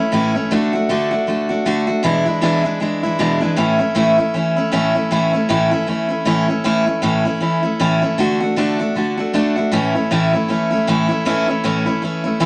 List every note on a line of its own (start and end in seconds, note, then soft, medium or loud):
0.00 0.12 A3 soft
0.00 0.12 C#4 medium
0.00 0.13 E4 medium
0.12 0.35 A2 medium
0.12 0.35 E3 medium
0.12 0.36 A3 loud
0.12 0.35 C#4 loud
0.12 0.33 E4 loud
0.35 0.50 A3 soft
0.35 0.52 C#4 medium
0.35 0.51 E4 medium
0.51 0.74 D3 loud
0.51 0.74 A3 loud
0.51 0.73 D4 loud
0.51 0.72 F#4 loud
0.73 0.89 A3 medium
0.73 0.89 D4 soft
0.73 0.89 F#4 medium
0.89 1.12 D3 medium
0.89 1.12 A3 loud
0.89 1.11 D4 loud
0.89 1.10 F#4 loud
1.11 1.27 A3 medium
1.11 1.27 D4 medium
1.11 1.27 F#4 medium
1.27 1.50 D3 medium
1.27 1.50 A3 medium
1.27 1.49 D4 medium
1.27 1.48 F#4 medium
1.49 1.65 A3 soft
1.49 1.66 D4 medium
1.49 1.66 F#4 medium
1.65 1.88 D3 medium
1.65 1.88 A3 medium
1.65 1.87 D4 loud
1.65 1.86 F#4 loud
1.87 2.04 A3 soft
1.87 2.03 D4 soft
1.87 2.04 F#4 medium
2.03 2.26 E2 loud
2.03 2.26 B2 medium
2.03 2.27 E3 loud
2.03 2.26 G#3 loud
2.03 2.25 D4 medium
2.03 2.24 E4 loud
2.25 2.41 E3 soft
2.25 2.42 G#3 medium
2.25 2.42 D4 medium
2.25 2.42 E4 medium
2.41 2.65 E2 medium
2.41 2.65 B2 loud
2.41 2.65 E3 medium
2.41 2.64 G#3 loud
2.41 2.64 D4 loud
2.41 2.62 E4 loud
2.64 2.79 E3 medium
2.64 2.80 G#3 medium
2.64 2.81 D4 medium
2.64 2.80 E4 medium
2.80 3.03 E3 medium
2.80 3.04 G#3 medium
2.80 3.03 D4 medium
2.80 3.02 E4 medium
3.03 3.18 E3 soft
3.03 3.19 G#3 soft
3.03 3.19 D4 medium
3.03 3.19 E4 medium
3.19 3.42 E2 medium
3.19 3.42 B2 medium
3.19 3.42 E3 medium
3.19 3.41 G#3 loud
3.19 3.40 D4 loud
3.19 3.39 E4 loud
3.41 3.56 E3 medium
3.41 3.57 G#3 medium
3.41 3.58 D4 medium
3.41 3.57 E4 medium
3.56 3.80 A2 loud
3.56 3.80 E3 loud
3.56 3.80 A3 loud
3.56 3.79 C#4 loud
3.56 3.78 E4 medium
3.79 3.94 A3 soft
3.79 3.95 C#4 medium
3.79 3.95 E4 medium
3.95 4.18 A2 medium
3.95 4.18 E3 medium
3.95 4.18 A3 loud
3.95 4.18 C#4 loud
3.95 4.17 E4 loud
4.18 4.34 A3 soft
4.18 4.34 C#4 medium
4.18 4.34 E4 medium
4.34 4.57 E3 medium
4.34 4.57 A3 medium
4.34 4.57 C#4 medium
4.34 4.55 E4 medium
4.56 4.71 A3 soft
4.56 4.72 C#4 medium
4.56 4.72 E4 medium
4.72 4.95 A2 medium
4.72 4.95 E3 medium
4.72 4.95 A3 medium
4.72 4.94 C#4 loud
4.72 4.93 E4 loud
4.94 5.11 A3 soft
4.94 5.11 C#4 medium
4.94 5.11 E4 medium
5.11 5.33 A2 loud
5.11 5.34 E3 medium
5.11 5.34 A3 loud
5.11 5.33 C#4 loud
5.11 5.32 E4 loud
5.33 5.49 A3 medium
5.33 5.49 C#4 medium
5.33 5.49 E4 medium
5.49 5.72 A2 loud
5.49 5.72 E3 medium
5.49 5.72 A3 loud
5.49 5.71 C#4 loud
5.49 5.70 E4 loud
5.71 5.87 A3 soft
5.71 5.88 C#4 medium
5.71 5.87 E4 medium
5.87 6.10 E3 medium
5.87 6.10 A3 medium
5.87 6.09 C#4 medium
5.87 6.07 E4 medium
6.09 6.25 A3 medium
6.09 6.25 C#4 medium
6.09 6.25 E4 medium
6.25 6.48 A2 medium
6.25 6.48 E3 medium
6.25 6.49 A3 loud
6.25 6.48 C#4 medium
6.25 6.47 E4 loud
6.48 6.64 A3 soft
6.48 6.64 C#4 medium
6.48 6.64 E4 medium
6.64 6.87 A2 loud
6.64 6.87 E3 medium
6.64 6.87 A3 medium
6.64 6.86 C#4 medium
6.64 6.85 E4 loud
6.86 7.02 A3 soft
6.86 7.02 C#4 medium
6.86 7.02 E4 medium
7.02 7.25 A2 medium
7.02 7.25 E3 medium
7.02 7.26 A3 loud
7.02 7.25 C#4 loud
7.02 7.24 E4 medium
7.25 7.40 A3 medium
7.25 7.41 C#4 medium
7.25 7.41 E4 medium
7.40 7.63 E3 medium
7.40 7.64 A3 medium
7.40 7.63 C#4 medium
7.40 7.61 E4 medium
7.63 7.79 A3 soft
7.63 7.80 C#4 medium
7.63 7.79 E4 medium
7.80 8.02 A2 loud
7.80 8.02 E3 medium
7.80 8.03 A3 loud
7.80 8.02 C#4 medium
7.80 8.00 E4 loud
8.02 8.18 A3 soft
8.02 8.19 C#4 soft
8.02 8.18 E4 medium
8.18 8.41 D3 loud
8.18 8.41 A3 loud
8.18 8.41 D4 medium
8.18 8.39 F#4 loud
8.40 8.56 A3 soft
8.40 8.57 D4 medium
8.40 8.56 F#4 medium
8.56 8.79 D3 medium
8.56 8.79 A3 medium
8.56 8.80 D4 loud
8.56 8.78 F#4 loud
8.79 8.95 A3 soft
8.79 8.96 D4 medium
8.79 8.95 F#4 medium
8.95 9.18 D3 medium
8.95 9.18 A3 medium
8.95 9.18 D4 medium
8.95 9.16 F#4 medium
9.17 9.33 A3 soft
9.17 9.34 D4 medium
9.17 9.33 F#4 medium
9.33 9.56 D3 medium
9.33 9.56 A3 medium
9.33 9.56 D4 medium
9.33 9.55 F#4 loud
9.56 9.71 A3 soft
9.56 9.73 D4 medium
9.56 9.72 F#4 medium
9.72 9.94 A2 loud
9.72 9.95 E3 loud
9.72 9.95 A3 loud
9.72 9.95 C#4 loud
9.72 9.93 E4 loud
9.95 10.11 A3 soft
9.95 10.11 C#4 medium
9.95 10.11 E4 medium
10.11 10.33 A2 loud
10.11 10.33 E3 medium
10.11 10.34 A3 loud
10.11 10.33 C#4 medium
10.11 10.32 E4 loud
10.33 10.48 A3 medium
10.33 10.49 C#4 medium
10.33 10.49 E4 medium
10.48 10.71 E3 medium
10.48 10.72 A3 medium
10.48 10.71 C#4 medium
10.48 10.69 E4 medium
10.70 10.87 A3 soft
10.70 10.87 C#4 medium
10.70 10.87 E4 medium
10.87 11.10 A2 medium
10.87 11.10 E3 loud
10.87 11.10 A3 medium
10.87 11.09 C#4 medium
10.87 11.07 E4 loud
11.09 11.25 A3 medium
11.09 11.25 C#4 medium
11.09 11.25 E4 medium
11.25 11.48 A2 medium
11.25 11.48 E3 loud
11.25 11.48 A3 loud
11.25 11.48 C#4 loud
11.25 11.46 E4 loud
11.48 11.63 A3 medium
11.48 11.64 C#4 medium
11.48 11.64 E4 medium
11.64 11.86 A2 medium
11.64 11.87 E3 medium
11.64 11.87 A3 loud
11.64 11.86 C#4 loud
11.64 11.85 E4 loud
11.86 12.02 A3 soft
11.86 12.03 C#4 medium
11.86 12.02 E4 medium
12.02 12.25 E3 medium
12.02 12.25 A3 medium
12.02 12.24 C#4 medium
12.02 12.23 E4 medium
12.24 12.39 A3 soft
12.24 12.40 C#4 medium
12.24 12.40 E4 medium
12.40 12.46 A2 medium
12.40 12.46 E3 loud
12.40 12.46 A3 loud
12.40 12.46 C#4 medium
12.40 12.46 E4 loud